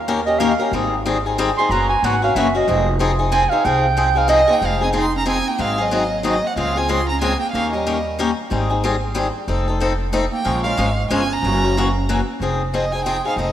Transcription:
Already playing: D#2
0.08 D#3 A#3 C#4 G4 A#4
0.26 C#4 G4 A#4 D#5
0.39 D#3 A#3 C#4 G4 A#4 F5
0.59 C#4 G4 A#4
0.72 G#1 D#3 G3 C4 D#4 G#4
1.06 D#3 G3 C4 D#4 G#4
1.26 C4 D#4 G#4
1.38 D#3 G3 C4 D#4 G#4
1.58 C4 D#4 G#4 C6
1.69 F#1 C#3 E3 A#3 C#4 F#4 A#5
1.89 G#5
2.02 G#1 C#3 E3 A#3 C#4 F#4 F#5
2.22 A#3 C#4 F#4 F5
2.35 F#1 C#3 E3 A#3 C#4 F#4 E5
2.55 A#3 C#4 F#4 D#5
2.67 F1 F3 C4 D#4 G#4
2.99 F3 C4 D#4 G#4
3.19 C4 D#4 G#4
3.32 F3 C4 D#4 G#4 G#5
3.49 C4 D#4 G#4 F5
3.65 C2 F3 C4 D#4 G#4 G5
3.97 F3 C4 D#4 G#4
4.15 C4 D#4 G#4 F5
4.28 F3 C4 D#4 G#4 D#5
4.34 D#5
4.47 A#3 C4 D#4 G#4
4.53 G5
4.61 F1 F3 G#3 C4 D#4 G#4
4.66 F5
4.81 C4 D#4 G#4 G#5
4.93 F3 C4 D#4 G#4
4.97 D#4 C6
5.15 C#4 A#5
5.26 F3 C4 D#4 G#4
5.30 G#5
5.48 A#3 G5
5.58 G#1 D#3 F#3 G#3 C4 D#4 G#4 F5
5.78 F#3 C4 D#4 G#4 D#5
5.91 D#3 F#3 C4 D#4 G#4
6.23 D#3 F#3 C4 D#4 G#4 D#5
6.43 A#3 F#5
6.55 C#2 C#3 G#3 C4 F4 G#4 F5
6.75 C4 F4 G#4 G#5
6.89 C#3 G#3 C4 F4 G#4 C6
7.09 C#4 A#5
7.21 C#3 G#3 C4 F4 G#4 G#5
7.39 A#3 G5
7.52 D#2 D#3 A#3 C#4 G4 A#4 F5
7.72 G3 C#4 G4 A#4 D#5
7.87 D#3 A#3 C#4 G4 A#4
8.19 D#3 A#3 C#4 G4 A#4
8.50 G#1 D#3 G3 C4 D#4 G#4
8.70 C4 D#4 G#4
8.84 D#3 G3 C4 D#4 G#4
9.14 D#3 G3 C4 D#4 G#4
9.48 F1 F3 C4 D#4 A4
9.68 C4 D#4 A4
9.80 F3 C4 D#4 A4
10.12 F3 A3 C4 D#4 A4 D#5
10.32 A#3 G5
10.45 A#1 F3 G#3 C#4 F4 A#4
10.63 G#3 C#4 F4 A#4 F5
10.77 G#1 F3 G#3 C#4 F4 A#4
11.10 G1 F3 G#3 C#4 F4 A#4 G#5
11.30 C#4 A#5
11.42 F#1 C#3 E3 A#3 C#4 F#4
11.64 A#3 C#4 F#4
11.77 C#3 E3 A#3 C#4 F#4
12.09 C#3 E3 A#3 C#4 F#4
12.40 F1 F3 C4 D#4 G#4
12.73 F3 C4 D#4 G#4 D#5
12.92 C4 D#4 G#4 G#5
13.05 F3 C4 D#4 G#4 G5
13.25 C4 D#4 G#4 F5
13.36 F1 F3 C4 D#4 A4 D#5

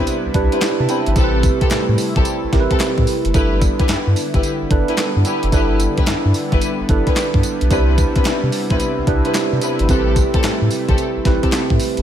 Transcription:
Already playing: C3 G3 B3 C4 D4 E4 G4 B4
0.07 closed hi-hat, tambourine
0.26 C2
0.34 C2 D4 E4 G4 B4, kick, closed hi-hat
0.51 C4 E4 B4, closed hi-hat
0.61 B4 E5, snare, clap, closed hi-hat, tambourine
0.80 C3 E5 A5
0.88 C4 E4 B4 D5 G5, closed hi-hat, tambourine
1.06 G#1 B4 E5, closed hi-hat
1.15 A1 G3 A3 C4 E4 G4 A4, kick, closed hi-hat, tambourine
1.24 B4
1.43 kick, closed hi-hat, tambourine
1.61 C4 G4 A4, kick, closed hi-hat
1.70 A2, snare, clap, closed hi-hat, tambourine
1.89 A2
1.98 open hi-hat, tambourine
2.15 A1 C4 G4 A4, kick, closed hi-hat
2.25 closed hi-hat, tambourine
2.43 A1
2.53 A1 C4 E4 G4 A#4, kick, snare, closed hi-hat
2.60 B4
2.70 C4 G4 A4, kick, closed hi-hat
2.79 snare, clap, closed hi-hat, tambourine
2.98 A2, kick
3.07 open hi-hat, tambourine
3.25 F#1, closed hi-hat
3.34 G1 D3 G3 B3 D4 E4 G4 A4 B4, kick, closed hi-hat, tambourine
3.62 kick, closed hi-hat, tambourine
3.79 E4 G4 B4, kick, closed hi-hat
3.88 G2, snare, clap, closed hi-hat, tambourine
4.07 G2
4.16 open hi-hat, tambourine
4.34 G1 E4 G4 B4, kick, closed hi-hat
4.43 closed hi-hat, tambourine
4.62 G1
4.70 G1 D4 E4 A4 B4, kick, closed hi-hat
4.88 E4 G4 B4, closed hi-hat
4.97 snare, clap, closed hi-hat, tambourine
5.16 G2
5.25 E4 G4 B4, closed hi-hat, tambourine
5.43 F#1, closed hi-hat
5.52 G1 D4 E4 G4 A4 B4, kick, closed hi-hat, tambourine
5.80 closed hi-hat, tambourine
5.97 E4 G4 B4, kick, closed hi-hat
6.06 G2, snare, clap, closed hi-hat, tambourine
6.25 G2
6.34 open hi-hat, tambourine
6.52 G1 E4 G4 B4, kick, closed hi-hat
6.61 closed hi-hat, tambourine
6.80 G1
6.89 G1 D4 E4 A4 B4, kick, closed hi-hat
7.06 E4 G4 B4, kick, closed hi-hat
7.16 snare, clap, closed hi-hat, tambourine
7.34 G2, kick
7.43 closed hi-hat, tambourine
7.61 B1, closed hi-hat
7.70 C2 C3 C4 D4 E4 G4 B4, kick, closed hi-hat, tambourine
7.98 kick, closed hi-hat, tambourine
8.16 C4 E4 B4, kick, closed hi-hat
8.25 C3, snare, clap, closed hi-hat, tambourine
8.43 C3
8.52 open hi-hat, tambourine
8.70 C2 C4 E4 B4, kick, closed hi-hat
8.79 closed hi-hat, tambourine
8.98 C2
9.07 C2 D4 E4 G4 B4, kick, closed hi-hat
9.25 C4 E4 B4, closed hi-hat
9.34 snare, clap, closed hi-hat, tambourine
9.53 C3
9.61 C4 E4 B4, closed hi-hat, tambourine
9.79 G#1, closed hi-hat
9.88 A1 A3 C4 E4 G4 A4 B4, kick, closed hi-hat, tambourine
10.16 kick, closed hi-hat, tambourine
10.34 C4 G4 A4, kick, closed hi-hat
10.43 A2, snare, clap, closed hi-hat, tambourine
10.62 A2
10.71 open hi-hat, tambourine
10.88 A1 C4 G4 A4, kick, closed hi-hat
10.98 closed hi-hat, tambourine
11.16 A1
11.25 A1 C4 E4 G4 B4, kick, snare, closed hi-hat
11.42 C4 G4 A4, kick, closed hi-hat
11.52 snare, clap, closed hi-hat, tambourine
11.70 A2, kick
11.80 open hi-hat, tambourine
11.97 F#1, closed hi-hat

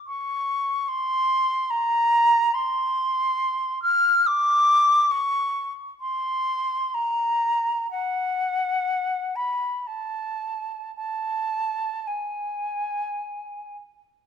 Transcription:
0.07 C#6
0.88 C6
1.70 A#5
2.54 C6
3.82 F6
4.26 D6
5.11 C#6
6.00 C6
6.94 A#5
7.91 F#5
9.35 B5
9.86 A5
10.96 A5
12.07 G#5

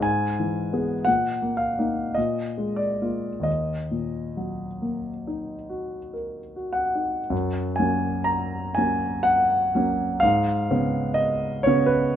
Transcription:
0.00 G#2 G#5
0.40 E3
0.73 B3 G#4
1.05 A#2 F#5
1.42 A#3
1.57 F5
1.79 A#3 D#4
2.14 A#2 D#5
2.58 G#3
2.76 D5
3.02 A#3 F4
3.40 D#2 D#5
3.91 A#2
4.37 F#3
4.82 A#3
5.27 D#4
5.69 F#4
6.13 A#4
6.56 F#4
6.73 F#5
6.95 D#4
7.30 F#2
7.76 F#3 A#3 C#4 G#5
8.24 A#5
8.75 F#3 A#3 C#4 G#5
9.23 F#5
9.75 F#3 A#3 C#4
10.20 G#2 F5
10.70 C#3 B3 C#4
11.14 D#5
11.63 C#3 B3 C#4 C#5
11.86 B4

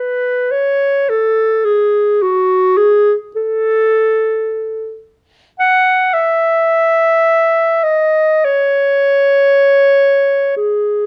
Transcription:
Already playing: B4
0.51 C#5
1.09 A4
1.65 G#4
2.22 F#4
2.77 G#4
3.36 A4
5.60 F#5
6.13 E5
7.84 D#5
8.45 C#5
10.57 G#4

